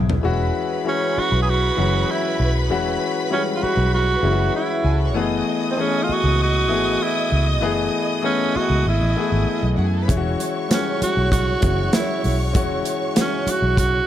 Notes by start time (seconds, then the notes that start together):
Already playing: B1 E3 B3 C#4 G#4
0.10 floor tom
0.23 E1 E3 G#3 C#4 F#4 B4 B5
0.85 E3 G#3 C#4 F#4
1.18 F#4, muted fingered electric bass stroke
1.32 B1
1.42 G#4
1.50 F#4
1.77 F#1 E3 F#3 C#4 F#4
1.84 G#3
2.11 E4
2.40 B1
2.70 E1 E3 G#3 C#4 F#4
3.30 E3 G3 C#4 F#4
3.37 G#3
3.56 F4
3.63 F#4, muted fingered electric bass stroke
3.77 B1
3.94 F#4
4.22 F#1 E3 G#3 C#4 E4
4.32 F#4
4.56 E4
4.83 C#2 G#4 G#5
4.92 A4 A5
5.00 B4 B5
5.07 C#5 C#6
5.14 F#1 E3 A3 B3 G#4 D#5 D#6
5.71 C4
5.77 E3 A3 B3 C#4 G#4
6.03 F4
6.09 F#4, muted fingered electric bass stroke
6.24 C#2
6.43 F#4
6.68 G#1 E3 A3 B3 G#4
7.03 E4
7.32 C#2
7.61 F#1 E3 A3 B3 G#4
8.23 E3 A3 B3 C#4 G#4
8.56 F#4, muted fingered electric bass stroke
8.70 C#2
8.86 G#1 E4
9.01 A1
9.16 E3 A3 B3 G#4
9.32 G#1
9.47 muted fingered electric bass stroke
9.63 B1
9.77 F#2 F#4 F#5
9.85 G#4 G#5
9.93 A4 A5
10.01 B4 B5
10.08 E1 E3 G#3 C#4 E4 C#5 C#6, kick, closed hi-hat, muted conga
10.17 F#4
10.39 closed hi-hat, muted conga
10.69 E3 G3 C#4 F#4, snare, closed hi-hat, high conga
10.73 G#3 C#4
11.02 F#4, muted fingered electric bass stroke, closed hi-hat, muted conga
11.17 B1
11.31 F#4, kick, closed hi-hat
11.61 F#1 E3 G#3 C#4 F#4, kick, closed hi-hat, muted conga, low conga
11.93 E4, snare, closed hi-hat, high conga
12.24 B1, open hi-hat, high conga
12.53 E1 E3 G#3 C#4 F#4, kick, closed hi-hat, muted conga
12.85 closed hi-hat
13.14 E3 G#3 C#4 F#4, snare, closed hi-hat, high conga
13.20 C#4
13.47 F#4, muted fingered electric bass stroke, closed hi-hat, muted conga
13.62 B1
13.77 F#4, kick, closed hi-hat